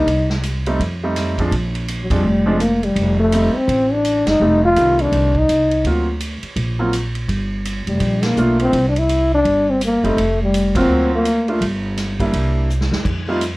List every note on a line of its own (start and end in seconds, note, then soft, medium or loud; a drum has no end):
0.00 0.31 D#4 medium
0.06 0.76 C2 medium
0.06 kick soft
0.06 ride medium
0.30 snare medium
0.43 hi-hat pedal medium
0.43 ride medium
0.66 0.79 G3 medium
0.66 0.79 A3 medium
0.66 0.79 C4 medium
0.66 0.79 D#4 medium
0.66 ride soft
0.79 1.48 F2 medium
0.79 kick soft
0.79 ride medium
1.03 1.37 G3 medium
1.03 1.37 A3 medium
1.03 1.37 C4 medium
1.03 1.37 D#4 medium
1.16 snare soft
1.16 hi-hat pedal medium
1.16 ride medium
1.38 1.51 F3 medium
1.38 1.51 G#3 medium
1.38 1.51 C4 medium
1.38 1.51 D4 medium
1.38 kick medium
1.38 ride soft
1.51 2.06 A#1 medium
1.51 kick soft
1.51 ride medium
1.75 ride soft
1.89 hi-hat pedal medium
1.89 ride medium
2.03 2.14 F#3 medium
2.10 2.22 F2 medium
2.10 2.23 F3 medium
2.10 2.49 G3 medium
2.10 2.23 G#3 medium
2.10 2.23 C4 medium
2.10 2.23 D4 medium
2.10 kick medium
2.10 ride medium
2.23 2.92 F1 medium
2.46 2.58 F3 medium
2.46 2.59 G#3 medium
2.46 2.60 G#3 medium
2.46 2.59 C4 medium
2.46 2.59 D4 medium
2.60 2.86 A#3 medium
2.60 hi-hat pedal medium
2.60 ride medium
2.83 3.19 G3 medium
2.83 ride soft
2.95 3.50 F1 medium
2.95 kick soft
2.95 ride medium
3.20 3.57 A3 medium
3.32 3.53 G3 medium
3.32 3.53 A3 medium
3.32 3.54 C4 medium
3.32 3.53 D#4 medium
3.32 hi-hat pedal medium
3.32 ride medium
3.55 3.95 C4 medium
3.55 muted upright bass stroke soft
3.68 4.23 A1 medium
3.68 kick soft
3.68 ride medium
3.93 4.30 D4 loud
4.05 hi-hat pedal medium
4.05 ride medium
4.26 4.39 F#1 medium
4.26 4.64 D#4 loud
4.26 snare medium
4.26 ride medium
4.40 4.74 F1 medium
4.40 4.61 G3 medium
4.40 4.61 A3 medium
4.40 4.61 C4 medium
4.40 4.62 D#4 medium
4.65 5.03 F4 loud
4.76 5.10 C2 medium
4.76 5.31 D#3 medium
4.76 5.31 G3 medium
4.76 5.31 A3 medium
4.76 5.31 C4 medium
4.76 hi-hat pedal medium
4.76 ride medium
4.99 5.40 D4 medium
4.99 ride soft
5.12 5.46 C2 medium
5.12 kick soft
5.12 ride medium
5.35 5.86 D#4 medium
5.35 kick medium
5.49 5.82 C2 medium
5.49 hi-hat pedal medium
5.49 ride medium
5.71 ride soft
5.84 6.39 D2 medium
5.84 6.06 F#3 medium
5.84 6.06 A#3 medium
5.84 6.06 C4 medium
5.84 6.06 F4 medium
5.84 kick soft
5.84 ride medium
6.21 hi-hat pedal medium
6.21 ride medium
6.43 muted upright bass stroke soft
6.43 ride soft
6.56 7.25 A#1 medium
6.56 kick soft
6.56 ride medium
6.79 6.91 F#3 medium
6.79 6.92 A#3 medium
6.79 6.92 C4 medium
6.79 6.92 F4 medium
6.93 hi-hat pedal medium
6.93 ride medium
7.15 ride soft
7.28 7.83 G1 medium
7.28 kick soft
7.28 ride medium
7.65 hi-hat pedal medium
7.65 ride medium
7.87 7.99 F1 medium
7.87 8.26 G3 medium
7.87 ride soft
8.00 8.34 A#1 medium
8.00 kick soft
8.00 ride medium
8.23 8.60 A#3 loud
8.23 snare medium
8.23 ride medium
8.37 8.71 B1 medium
8.37 8.73 A3 medium
8.37 8.74 A#3 medium
8.37 8.74 D4 medium
8.37 8.74 F4 medium
8.37 hi-hat pedal medium
8.60 8.86 C4 loud
8.60 ride soft
8.73 9.41 C2 medium
8.73 kick soft
8.73 ride medium
8.89 9.00 D4 medium
8.96 9.33 E4 loud
8.96 ride soft
9.09 hi-hat pedal medium
9.09 ride medium
9.34 9.72 D4 medium
9.45 9.99 G1 medium
9.45 kick soft
9.45 ride medium
9.70 9.82 C4 medium
9.81 10.08 A#3 medium
9.81 hi-hat pedal medium
9.81 ride medium
10.03 10.16 F#1 medium
10.03 10.16 G3 medium
10.03 10.16 A3 medium
10.03 10.41 A3 medium
10.03 10.16 C4 medium
10.03 10.17 D#4 medium
10.03 ride soft
10.16 10.85 F1 medium
10.16 kick soft
10.16 ride medium
10.43 10.75 G3 medium
10.54 hi-hat pedal medium
10.54 ride medium
10.75 11.23 F#3 medium
10.75 11.23 A#3 medium
10.75 11.23 C4 medium
10.75 11.11 C4 medium
10.75 11.23 F4 medium
10.75 kick medium
10.75 ride medium
10.88 11.57 D2 medium
11.15 11.60 A#3 medium
11.25 hi-hat pedal soft
11.25 ride medium
11.48 11.60 A3 medium
11.48 11.60 A#3 medium
11.48 11.60 D4 medium
11.48 11.60 F4 medium
11.48 ride soft
11.61 12.29 G1 medium
11.61 kick soft
11.61 ride medium
11.97 snare soft
11.97 hi-hat pedal medium
11.97 ride medium
12.20 12.67 G3 medium
12.20 12.67 A#3 medium
12.20 12.67 D4 medium
12.20 12.67 E4 medium
12.20 kick medium
12.20 ride soft
12.33 12.88 C2 medium
12.33 kick soft
12.33 ride medium
12.70 hi-hat pedal medium
12.81 snare medium
12.91 13.04 E2 medium
12.91 snare medium
13.04 13.57 F2 medium
13.04 kick medium
13.04 crash medium
13.28 13.40 G3 medium
13.28 13.40 A3 medium
13.28 13.41 C4 medium
13.28 13.41 D#4 medium
13.28 13.40 F4 medium
13.41 hi-hat pedal medium
13.41 ride medium